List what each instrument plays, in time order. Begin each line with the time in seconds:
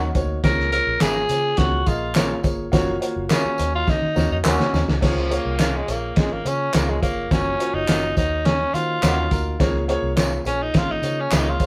Already playing: tenor saxophone F#4
0.15 fingered electric bass D2, upright piano A#3 D#4 F#4 C#5, kick, closed hi-hat, tambourine
0.44 fingered electric bass C#2, upright piano C#3 A#3 F4 G#4 C#5, tenor saxophone A#4, kick, snare, closed hi-hat, tambourine
0.60 snare
0.72 upright piano A#3 F4 G#4 C#5, tenor saxophone A#4, closed hi-hat, tambourine
0.87 fingered electric bass A#1
1.00 fingered electric bass G#1, upright piano A#3 F4 G#4 C#5, clean electric guitar G#4 A#4 F5, tenor saxophone G#4, snare, clap, closed hi-hat, tambourine
1.29 fingered electric bass C#3, upright piano A#3 F4 G#4 C#5, closed hi-hat, tambourine
1.57 fingered electric bass C#2, upright piano A#3 F4 G#4 C#5, tenor saxophone F#4, kick, snare, closed hi-hat
1.86 fingered electric bass A#1, upright piano A#3 F4 G#4 D#5, tenor saxophone F4, kick, closed hi-hat, tambourine
2.15 upright piano A#3 F4 G#4 C#5, clean electric guitar G#4 A#4 F5, snare, clap, closed hi-hat, tambourine
2.43 fingered electric bass G1, upright piano A#3 F4 G#4 C#5, kick, closed hi-hat, tambourine
2.72 fingered electric bass F#1, upright piano A#3 F4 F#4 C#5, kick, snare, closed hi-hat, tambourine
3.01 upright piano A#3 F4 F#4 C#5, closed hi-hat
3.16 fingered electric bass F#1
3.29 upright piano A#3 F4 F#4 G#4, tenor saxophone C#4, clean electric guitar A#4 C#5 F5, snare, clap, closed hi-hat, tambourine
3.45 muted fingered electric bass stroke
3.58 fingered electric bass D#2, upright piano D#3 A#3 D#4 F#4 C#5, closed hi-hat, tambourine
3.75 tenor saxophone F4
3.87 tenor saxophone D#4, kick, snare, tambourine
4.02 fingered electric bass D#3
4.15 fingered electric bass D#2, upright piano A#3 D#4 F#4 C#5, snare, tambourine
4.31 fingered electric bass F2, tenor saxophone D#4
4.44 fingered electric bass D#2, upright piano A#3 D#4 F#4 C#5, tenor saxophone C#4, clean electric guitar A#4 C#5 F#5, snare, clap, tambourine
4.60 snare
4.73 fingered electric bass D#2, upright piano A#3 D#4 F#4 C#5, snare, tambourine
4.88 fingered electric bass C#2, snare
5.01 fingered electric bass C#2, upright piano A#3 C#4 F4 G#4 C#5, kick, snare, crash, tambourine
5.05 tenor saxophone F3
5.18 snare
5.30 upright piano A#3 F4 G#4 C#5, tenor saxophone A#3, closed hi-hat
5.45 fingered electric bass C2
5.58 upright piano A#3 F4 G#4 C#5, clean electric guitar A#4 C#5 F5, snare, clap, closed hi-hat, tambourine
5.76 tenor saxophone G#3
5.87 fingered electric bass A#1, upright piano A#3 F4 G#4 C#5, tenor saxophone A#3, closed hi-hat, tambourine
6.15 fingered electric bass G#1, tenor saxophone G#3, upright piano A#3 F4 G#4 C#5, kick, snare, closed hi-hat, tambourine
6.32 tenor saxophone A#3
6.44 fingered electric bass C#3, upright piano A#3 F4 G#4 C#5, tenor saxophone C#4, closed hi-hat, tambourine
6.73 fingered electric bass C#2, upright piano A#3 F4 G#4 C#5, tenor saxophone A#3, clean electric guitar A#4 C#5 F5, snare, clap, closed hi-hat, tambourine
6.89 tenor saxophone G#3
7.01 fingered electric bass G1, upright piano A#3 F4 G#4 C#5, tenor saxophone A#3, kick, closed hi-hat, tambourine
7.31 fingered electric bass F#1, upright piano A#3 F4 F#4 C#5, tenor saxophone C#4, kick, snare, closed hi-hat, tambourine
7.59 upright piano A#3 F4 F#4 C#5, closed hi-hat
7.74 fingered electric bass F#1, tenor saxophone D#4
7.87 fingered electric bass F#1, upright piano A#3 F4 F#4 C#5, clean electric guitar F#4 A#4 F5, snare, clap, closed hi-hat, tambourine
8.16 fingered electric bass D#2, upright piano D#3 A#3 D#4 F#4 C#5, tenor saxophone D#4, kick, closed hi-hat, tambourine
8.45 tenor saxophone C#4, snare, closed hi-hat
8.73 fingered electric bass D#3, upright piano A#3 D#4 F#4 C5, tenor saxophone F4, closed hi-hat, tambourine
9.02 fingered electric bass D#2, upright piano A#3 D#4 F#4 C#5, clean electric guitar A#4 C#5 F#5, snare, clap, closed hi-hat, tambourine
9.31 fingered electric bass D2, upright piano A#3 D#4 F#4 A#4, kick, closed hi-hat, tambourine
9.60 fingered electric bass C#2, upright piano A#3 C#4 F4 G#4 C#5, kick, snare, closed hi-hat, tambourine
9.88 upright piano A#3 F4 G#4 C#5, closed hi-hat
10.02 fingered electric bass C2
10.16 upright piano A#3 F4 G#4 C#5, clean electric guitar A#4 C#5 F5, snare, clap, closed hi-hat, tambourine
10.45 fingered electric bass A#1, upright piano A#3 F4 G#4 C#5, tenor saxophone C#4, closed hi-hat, tambourine
10.62 tenor saxophone D#4
10.73 fingered electric bass G#1, upright piano A#3 F4 G#4 C#5, tenor saxophone F4, kick, snare, closed hi-hat, tambourine
10.91 tenor saxophone D#4
11.02 fingered electric bass C#3, upright piano A#3 F4 G#4 C#5, closed hi-hat, tambourine
11.20 tenor saxophone C#4
11.31 fingered electric bass C#2, upright piano A#3 F4 G#4 C#5, tenor saxophone D#4, clean electric guitar A#4 C#5 F5, snare, clap, closed hi-hat, tambourine
11.49 tenor saxophone F4
11.59 fingered electric bass G1, upright piano A#3 F4 G#4 C#5, kick, closed hi-hat, tambourine